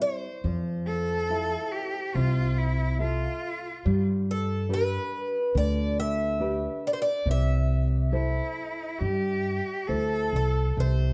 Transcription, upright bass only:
0, 0, Header, 1, 2, 480
1, 0, Start_track
1, 0, Key_signature, 0, "major"
1, 0, Tempo, 854701
1, 245, Time_signature, 4, 2, 24, 8
1, 4562, Tempo, 882353
1, 6199, End_track
2, 0, Start_track
2, 0, Title_t, "Upright bass"
2, 0, Program_c, 0, 32
2, 246, Note_on_c, 0, 41, 84
2, 870, Note_off_c, 0, 41, 0
2, 1209, Note_on_c, 0, 36, 86
2, 1829, Note_off_c, 0, 36, 0
2, 2165, Note_on_c, 0, 43, 96
2, 2785, Note_off_c, 0, 43, 0
2, 3116, Note_on_c, 0, 38, 88
2, 3740, Note_off_c, 0, 38, 0
2, 4075, Note_on_c, 0, 36, 84
2, 4705, Note_off_c, 0, 36, 0
2, 5042, Note_on_c, 0, 43, 78
2, 5355, Note_off_c, 0, 43, 0
2, 5521, Note_on_c, 0, 38, 71
2, 5742, Note_off_c, 0, 38, 0
2, 5762, Note_on_c, 0, 36, 71
2, 5979, Note_off_c, 0, 36, 0
2, 6003, Note_on_c, 0, 36, 81
2, 6199, Note_off_c, 0, 36, 0
2, 6199, End_track
0, 0, End_of_file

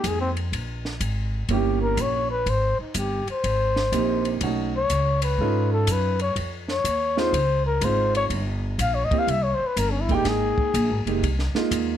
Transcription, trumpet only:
0, 0, Header, 1, 2, 480
1, 0, Start_track
1, 0, Key_signature, -4, "minor"
1, 0, Tempo, 486618
1, 520, Time_signature, 4, 2, 24, 8
1, 11808, End_track
2, 0, Start_track
2, 0, Title_t, "Trumpet"
2, 0, Program_c, 0, 56
2, 74, Note_on_c, 0, 68, 79
2, 199, Note_off_c, 0, 68, 0
2, 205, Note_on_c, 0, 60, 82
2, 300, Note_off_c, 0, 60, 0
2, 1500, Note_on_c, 0, 67, 69
2, 1787, Note_off_c, 0, 67, 0
2, 1796, Note_on_c, 0, 70, 86
2, 1988, Note_on_c, 0, 73, 89
2, 2003, Note_off_c, 0, 70, 0
2, 2271, Note_off_c, 0, 73, 0
2, 2277, Note_on_c, 0, 71, 88
2, 2464, Note_on_c, 0, 72, 94
2, 2478, Note_off_c, 0, 71, 0
2, 2765, Note_off_c, 0, 72, 0
2, 2771, Note_on_c, 0, 63, 47
2, 2929, Note_off_c, 0, 63, 0
2, 2937, Note_on_c, 0, 67, 76
2, 3246, Note_off_c, 0, 67, 0
2, 3261, Note_on_c, 0, 72, 90
2, 4326, Note_off_c, 0, 72, 0
2, 4700, Note_on_c, 0, 73, 94
2, 5133, Note_off_c, 0, 73, 0
2, 5159, Note_on_c, 0, 71, 77
2, 5602, Note_off_c, 0, 71, 0
2, 5651, Note_on_c, 0, 69, 77
2, 5839, Note_on_c, 0, 71, 82
2, 5854, Note_off_c, 0, 69, 0
2, 6127, Note_off_c, 0, 71, 0
2, 6133, Note_on_c, 0, 73, 85
2, 6272, Note_off_c, 0, 73, 0
2, 6613, Note_on_c, 0, 73, 91
2, 7091, Note_on_c, 0, 72, 80
2, 7106, Note_off_c, 0, 73, 0
2, 7553, Note_off_c, 0, 72, 0
2, 7559, Note_on_c, 0, 70, 77
2, 7736, Note_on_c, 0, 72, 85
2, 7751, Note_off_c, 0, 70, 0
2, 8046, Note_off_c, 0, 72, 0
2, 8054, Note_on_c, 0, 73, 99
2, 8144, Note_off_c, 0, 73, 0
2, 8691, Note_on_c, 0, 77, 83
2, 8823, Note_on_c, 0, 73, 80
2, 8837, Note_off_c, 0, 77, 0
2, 8927, Note_on_c, 0, 75, 88
2, 8942, Note_off_c, 0, 73, 0
2, 9061, Note_on_c, 0, 77, 92
2, 9076, Note_off_c, 0, 75, 0
2, 9179, Note_on_c, 0, 76, 90
2, 9194, Note_off_c, 0, 77, 0
2, 9304, Note_on_c, 0, 73, 84
2, 9319, Note_off_c, 0, 76, 0
2, 9417, Note_on_c, 0, 72, 86
2, 9431, Note_off_c, 0, 73, 0
2, 9536, Note_on_c, 0, 71, 81
2, 9551, Note_off_c, 0, 72, 0
2, 9655, Note_on_c, 0, 70, 83
2, 9670, Note_off_c, 0, 71, 0
2, 9776, Note_on_c, 0, 61, 70
2, 9791, Note_off_c, 0, 70, 0
2, 9880, Note_on_c, 0, 64, 88
2, 9895, Note_off_c, 0, 61, 0
2, 10008, Note_on_c, 0, 67, 83
2, 10022, Note_off_c, 0, 64, 0
2, 10139, Note_on_c, 0, 68, 96
2, 10153, Note_off_c, 0, 67, 0
2, 10932, Note_off_c, 0, 68, 0
2, 11808, End_track
0, 0, End_of_file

